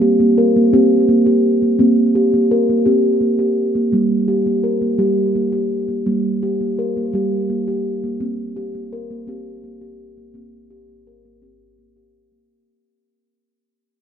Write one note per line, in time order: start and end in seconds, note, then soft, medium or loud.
0.00 0.54 C4 medium
0.00 0.20 G4 medium
0.20 0.38 A#3 medium
0.38 0.56 A#4 medium
0.56 0.74 A#3 medium
0.73 1.61 C4 medium
0.73 1.09 G4 medium
1.09 1.27 A#3 medium
1.26 1.62 G4 medium
1.62 1.79 A#3 soft
1.79 2.15 A#3 medium
1.79 2.67 C4 medium
2.15 2.33 G4 medium
2.34 2.51 A#3 medium
2.51 2.69 A#4 medium
2.69 2.87 A#3 medium
2.86 3.74 C4 medium
2.86 3.22 G4 medium
3.21 3.39 A#3 medium
3.39 3.75 G4 medium
3.75 3.91 A#3 medium
3.92 4.80 G3 medium
3.92 4.28 A#3 medium
4.28 4.46 G4 medium
4.46 4.64 A#3 medium
4.64 4.82 A#4 medium
4.82 5.00 A#3 medium
4.98 5.86 G3 medium
4.98 5.35 G4 medium
5.35 5.53 A#3 medium
5.52 5.88 G4 medium
5.88 6.05 A#3 soft
6.06 6.94 G3 medium
6.06 6.42 A#3 medium
6.43 6.60 G4 medium
6.61 6.78 A#3 soft
6.79 6.96 A#4 medium
6.97 7.14 A#3 medium
7.13 8.01 G3 medium
7.13 7.50 G4 medium
7.50 7.67 A#3 medium
7.68 8.03 G4 medium
8.04 8.19 A#3 medium
8.20 8.56 A#3 medium
8.20 9.08 C4 medium
8.56 8.74 G4 medium
8.75 8.92 A#3 medium
8.93 9.10 A#4 medium
9.11 9.28 A#3 medium
9.27 10.15 C4 medium
9.27 9.64 G4 medium
9.64 9.81 A#3 medium
9.81 10.17 G4 medium
10.17 10.34 A#3 soft
10.34 10.71 A#3 medium
10.34 11.22 C4 medium
10.70 10.89 G4 medium
10.89 11.07 A#3 medium
11.07 11.25 A#4 medium
11.25 11.43 A#3 medium
11.42 12.30 C4 medium
11.42 11.78 G4 medium
11.79 11.96 A#3 medium
11.96 12.32 G4 medium
12.32 12.50 A#3 soft